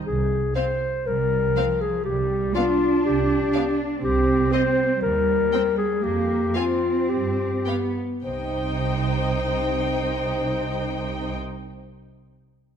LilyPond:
<<
  \new Staff \with { instrumentName = "Violin section" } { \time 4/4 \key c \minor \tempo 4 = 117 r4 f''4 r4 f''4 | r4 f''4 r4 f''4 | r4 ees''4 r4 g''4 | r4 aes''4 r4 g''4 |
g''1~ | g''1 | }
  \new Staff \with { instrumentName = "Violin section" } { \time 4/4 \key c \minor r4 c''4 r4 c''4 | r4 d''4 r4 d''4 | r4 c''4 r4 c''4 | r4 f''4 r4 f''4 |
c''1~ | c''1 | }
  \new Staff \with { instrumentName = "Clarinet" } { \time 4/4 \key c \minor aes'4 c''4 bes'4. aes'8 | g'4 f'4 g'4. r8 | g'4 c''4 bes'4. aes'8 | g'4 f'4 g'4. r8 |
c''1~ | c''1 | }
  \new Staff \with { instrumentName = "Viola section" } { \time 4/4 \key c \minor r4 c'4 r4 c'4 | r4 b4 r4 b4 | r4 c'4 r4 c'4 | r4 c'4 r4 b4 |
ees'1~ | ees'1 | }
  \new Staff \with { instrumentName = "Cello section" } { \clef bass \time 4/4 \key c \minor r2 g4 f4 | g4 d'2. | c'2 g2 | bes4 c'2 b8 r8 |
c1~ | c1 | }
  \new Staff \with { instrumentName = "Double bass section" } { \clef bass \time 4/4 \key c \minor c,4 r4 c,4 r4 | c,4 r4 c,4 r4 | c,4 r4 ees,4 r4 | f,4 r4 g,4 r4 |
c,1~ | c,1 | }
>>